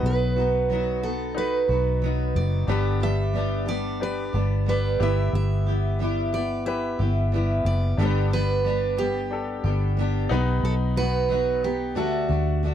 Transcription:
0.00 1.65 B1 loud
0.00 0.38 B2 medium
0.00 0.37 F#3 medium
0.00 0.39 B3 medium
0.00 0.37 D#4 medium
0.00 0.79 D#4 medium
0.00 0.35 F#4 medium
0.00 0.80 F#4 medium
0.00 0.84 B4 medium
0.06 1.00 B4 loud
0.36 0.70 B3 soft
0.36 0.70 D#4 medium
0.36 0.69 F#4 medium
0.70 1.03 F#3 medium
0.70 1.03 B3 medium
0.70 1.03 D#4 medium
0.70 1.01 F#4 medium
1.02 1.71 B3 soft
1.02 1.70 D#4 soft
1.02 1.67 F#4 medium
1.02 1.37 A4 medium
1.35 2.45 D#4 medium
1.35 2.45 F#4 medium
1.35 2.46 B4 medium
1.35 2.39 B4 loud
1.68 2.37 B1 loud
1.68 2.02 B3 soft
1.68 2.03 D#4 soft
1.68 2.02 F#4 soft
2.02 2.68 F#3 medium
2.02 2.69 B3 medium
2.02 2.69 D#4 medium
2.02 2.69 F#4 medium
2.35 2.66 F#1 medium
2.35 3.03 D5 medium
2.67 4.30 G1 loud
2.67 3.01 G2 medium
2.67 3.01 D3 medium
2.67 3.02 G3 medium
2.67 3.02 B3 medium
2.67 3.77 D4 medium
2.67 3.01 D4 medium
2.67 3.78 G4 medium
2.67 2.99 G4 medium
2.67 3.78 B4 medium
3.01 3.32 G3 soft
3.01 3.33 B3 soft
3.01 3.34 D4 medium
3.01 3.34 G4 medium
3.01 3.68 E5 loud
3.33 3.67 G3 medium
3.33 3.67 B3 medium
3.33 3.66 D4 medium
3.33 3.64 G4 medium
3.66 4.36 G3 soft
3.66 4.35 B3 soft
3.66 4.33 D4 medium
3.66 4.32 G4 medium
3.66 4.02 D5 loud
4.00 5.00 D4 medium
4.00 4.98 G4 medium
4.00 4.99 B4 medium
4.00 4.70 D5 loud
4.33 4.96 G1 loud
4.33 4.65 G3 soft
4.33 4.67 B3 soft
4.33 4.67 D4 soft
4.33 4.66 G4 medium
4.66 5.00 G3 medium
4.66 5.01 B3 medium
4.66 5.00 D4 medium
4.66 4.99 G4 medium
4.66 5.02 B4 loud
4.99 5.31 G1 loud
4.99 5.99 G3 medium
4.99 5.69 B3 medium
4.99 6.09 E4 medium
4.99 5.67 E4 medium
4.99 6.09 G4 medium
4.99 5.66 G4 medium
4.99 6.10 B4 medium
4.99 5.34 E5 loud
5.33 6.95 G1 loud
5.33 6.30 E5 loud
5.66 5.99 B3 soft
5.66 6.00 E4 soft
5.66 6.00 G4 medium
5.99 6.32 G3 medium
5.99 6.33 B3 medium
5.99 6.33 E4 medium
5.99 6.31 G4 medium
6.33 7.02 B3 soft
6.33 7.00 E4 soft
6.33 6.98 G4 medium
6.33 6.64 D5 loud
6.66 7.75 E4 medium
6.66 7.76 G4 medium
6.66 7.76 B4 medium
6.66 7.66 E5 loud
6.99 7.61 G1 loud
6.99 7.32 B3 soft
6.99 7.33 E4 soft
6.99 7.32 G4 medium
7.32 7.99 G3 medium
7.32 7.99 B3 medium
7.32 7.99 E4 medium
7.32 8.00 G4 medium
7.65 7.95 F#1 medium
7.65 8.28 D5 loud
7.97 9.60 G1 loud
7.97 8.31 G2 medium
7.97 8.32 D3 medium
7.97 8.32 G3 medium
7.97 8.32 B3 medium
7.97 9.07 D4 medium
7.97 8.31 D4 medium
7.97 9.08 G4 medium
7.97 8.30 G4 medium
7.97 8.05 A4 medium
8.06 9.11 B4 medium
8.31 8.63 G3 soft
8.31 8.65 B3 medium
8.31 8.65 D4 medium
8.31 8.64 G4 medium
8.31 9.01 B4 loud
8.64 8.98 G3 medium
8.64 8.98 B3 medium
8.64 8.97 D4 medium
8.64 8.96 G4 medium
8.97 9.65 G3 soft
8.97 9.66 B3 soft
8.97 9.63 D4 medium
8.97 9.62 G4 medium
8.97 10.64 G4 loud
9.31 10.30 D4 medium
9.31 10.31 G4 medium
9.31 10.31 A4 medium
9.64 10.26 G1 loud
9.64 9.96 G3 soft
9.64 9.97 B3 medium
9.64 9.97 D4 soft
9.64 9.97 G4 medium
9.97 10.30 G3 medium
9.97 10.31 B3 medium
9.97 10.31 D4 medium
9.97 10.32 G4 medium
10.29 10.61 B1 loud
10.29 10.98 B2 medium
10.29 10.97 B3 medium
10.29 11.39 D#4 loud
10.29 10.97 D#4 medium
10.29 11.40 B4 loud
10.29 11.40 F#5 medium
10.63 11.96 B1 loud
10.63 10.73 A4 medium
10.96 11.29 B3 soft
10.96 11.30 D#4 soft
10.96 11.30 F#4 medium
10.96 11.65 B4 loud
11.28 11.62 F#3 medium
11.28 11.63 B3 medium
11.28 11.62 D#4 medium
11.28 11.64 F#4 medium
11.64 11.96 B3 soft
11.64 11.96 D#4 soft
11.64 11.94 G4 medium
11.95 12.27 D2 loud
11.95 12.29 D3 medium
11.95 12.29 A3 medium
11.95 12.74 D4 medium
11.95 12.29 D4 medium
11.95 12.74 F#4 medium
11.95 12.27 F#4 medium
11.95 12.74 A4 medium
12.29 12.74 D2 loud
12.29 12.63 A3 soft
12.29 12.63 D4 soft
12.29 12.62 F#4 medium
12.63 12.74 D3 medium
12.63 12.74 A3 medium
12.63 12.74 D4 medium
12.63 12.74 F#4 medium

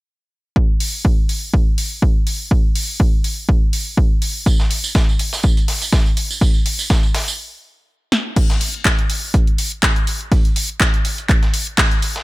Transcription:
0.56 kick loud
0.80 open hi-hat loud
1.05 kick loud
1.29 open hi-hat medium
1.54 kick loud
1.78 open hi-hat medium
2.02 kick medium
2.27 open hi-hat medium
2.51 kick loud
2.75 open hi-hat loud
3.00 kick loud
3.24 open hi-hat medium
3.49 kick loud
3.73 open hi-hat loud
3.97 kick loud
4.22 open hi-hat medium
4.46 kick loud
4.46 closed hi-hat medium
4.46 tambourine medium
4.60 snare medium
4.60 tambourine soft
4.71 closed hi-hat medium
4.71 open hi-hat loud
4.84 tambourine medium
4.95 kick loud
4.95 snare loud
4.95 closed hi-hat medium
4.95 tambourine medium
5.09 tambourine soft
5.19 closed hi-hat medium
5.19 open hi-hat medium
5.33 snare soft
5.33 tambourine medium
5.43 kick loud
5.43 closed hi-hat medium
5.43 tambourine medium
5.57 closed hi-hat medium
5.57 tambourine soft
5.68 snare soft
5.68 open hi-hat loud
5.82 closed hi-hat medium
5.82 tambourine medium
5.93 kick loud
5.93 snare loud
5.93 closed hi-hat medium
5.93 tambourine medium
6.06 tambourine soft
6.17 closed hi-hat medium
6.17 open hi-hat medium
6.30 tambourine medium
6.41 kick loud
6.41 open hi-hat medium
6.41 tambourine medium
6.54 tambourine soft
6.66 closed hi-hat medium
6.66 open hi-hat loud
6.79 tambourine medium
6.90 kick loud
6.90 snare loud
6.90 closed hi-hat medium
6.90 tambourine medium
7.03 tambourine soft
7.14 snare medium
7.14 closed hi-hat medium
7.14 open hi-hat medium
7.28 tambourine medium
8.12 snare medium
8.36 kick loud
8.36 closed hi-hat medium
8.36 crash medium
8.50 snare medium
8.50 closed hi-hat medium
8.61 closed hi-hat medium
8.61 open hi-hat loud
8.74 closed hi-hat soft
8.85 kick loud
8.85 snare loud
8.85 clap loud
8.85 closed hi-hat medium
8.99 closed hi-hat medium
9.10 closed hi-hat medium
9.10 open hi-hat medium
9.34 kick loud
9.34 closed hi-hat medium
9.47 closed hi-hat medium
9.58 closed hi-hat medium
9.58 open hi-hat loud
9.83 kick loud
9.83 snare loud
9.83 clap loud
9.83 closed hi-hat medium
9.96 closed hi-hat medium
10.07 closed hi-hat medium
10.07 open hi-hat medium
10.21 closed hi-hat soft
10.32 kick loud
10.32 closed hi-hat medium
10.32 open hi-hat medium
10.45 closed hi-hat soft
10.56 closed hi-hat medium
10.56 open hi-hat loud
10.69 closed hi-hat soft
10.80 kick loud
10.80 snare loud
10.80 clap loud
10.80 closed hi-hat medium
10.94 closed hi-hat medium
11.05 closed hi-hat medium
11.05 open hi-hat medium
11.18 closed hi-hat soft
11.29 kick loud
11.29 clap medium
11.29 closed hi-hat medium
11.43 snare soft
11.43 closed hi-hat soft
11.54 closed hi-hat medium
11.54 open hi-hat loud
11.67 closed hi-hat soft
11.78 kick loud
11.78 snare loud
11.78 clap loud
11.78 closed hi-hat medium
11.91 closed hi-hat medium
12.02 closed hi-hat medium
12.02 open hi-hat medium
12.16 snare medium
12.16 closed hi-hat soft

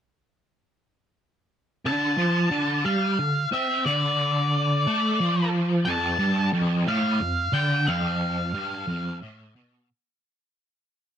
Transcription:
1.85 2.17 D3 loud
1.85 2.89 A5 loud
2.18 2.50 F3 medium
2.51 2.84 D3 loud
2.85 3.17 G3 loud
2.85 3.48 F5 medium
3.19 3.45 D3 medium
3.52 3.84 C4 loud
3.52 3.85 E5 medium
3.86 4.85 D3 loud
3.86 5.49 D5 medium
4.87 5.19 A3 loud
5.20 5.86 F3 medium
5.85 6.19 F2 loud
5.85 6.49 A5 loud
6.19 6.52 G2 medium
6.54 6.86 F2 loud
6.87 7.19 A2 loud
6.87 7.57 F5 medium
7.21 7.48 F2 medium
7.53 7.86 D3 medium
7.53 7.88 G5 loud
7.87 8.54 F2 loud
7.87 9.17 F5 medium
8.54 8.87 G2 loud
8.87 9.20 F2 loud
9.22 9.54 A2 medium
9.56 9.88 B2 loud

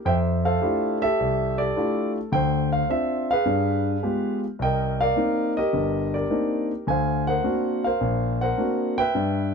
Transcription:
0.05 0.54 F2 medium
0.05 0.44 C5 medium
0.05 1.00 E5 medium
0.05 0.15 G5 medium
0.45 1.02 A4 medium
0.45 1.54 C5 medium
0.45 0.97 F5 medium
0.62 1.02 A3 soft
0.62 1.02 D4 soft
0.62 1.02 E4 soft
0.62 1.02 F4 soft
0.62 1.01 G4 medium
1.02 1.58 G4 medium
1.02 1.58 A4 medium
1.02 1.59 E5 loud
1.20 1.69 C2 medium
1.58 1.76 G4 soft
1.58 2.29 A4 soft
1.58 2.10 D5 medium
1.76 2.16 A3 soft
1.76 2.17 D4 soft
1.76 2.16 E4 soft
1.76 2.17 F4 soft
1.76 2.17 G4 medium
2.32 2.81 D2 medium
2.32 3.43 C5 medium
2.32 2.68 G5 medium
2.73 2.90 F5 medium
2.89 3.30 C4 medium
2.89 3.30 D4 soft
2.89 3.30 F4 medium
2.89 3.29 E5 medium
3.31 4.40 G#4 medium
3.31 4.40 B4 medium
3.31 4.39 F5 medium
3.46 3.95 G2 medium
4.03 4.43 G#3 soft
4.03 4.43 B3 soft
4.03 4.43 F4 soft
4.03 4.44 G4 soft
4.59 5.09 C2 medium
4.59 5.00 A#4 medium
4.59 5.56 D#5 medium
4.59 5.01 G5 medium
5.01 5.57 A#4 medium
5.01 6.10 D5 medium
5.01 5.52 F5 medium
5.16 5.57 A#3 soft
5.16 5.57 C4 soft
5.16 5.57 D#4 medium
5.57 6.14 G4 medium
5.57 6.14 A#4 medium
5.57 6.14 D#5 medium
5.73 6.23 G1 medium
6.14 6.84 G4 soft
6.14 6.85 A#4 soft
6.14 6.66 D5 medium
6.30 6.71 A#3 soft
6.30 6.71 C4 soft
6.30 6.71 D4 soft
6.30 6.71 D#4 medium
6.87 7.36 D2 medium
6.87 7.28 C5 medium
6.87 7.83 F5 medium
6.87 7.24 G#5 medium
7.27 7.84 A#4 medium
7.27 7.85 C5 medium
7.27 7.85 F#5 medium
7.44 7.84 A#3 soft
7.44 7.84 C4 soft
7.44 7.84 D4 soft
7.44 7.85 F#4 medium
7.84 8.41 A#4 medium
7.84 8.41 C5 medium
7.84 8.42 F5 medium
8.01 8.50 A#1 medium
8.41 9.12 A#4 medium
8.41 9.12 C5 medium
8.41 8.99 F#5 medium
8.58 8.98 A#3 soft
8.58 8.98 C4 soft
8.58 8.99 D4 soft
8.58 8.99 F#4 soft
8.98 9.54 B4 medium
8.98 9.54 E5 medium
8.98 9.54 G5 medium
9.15 9.54 G2 medium

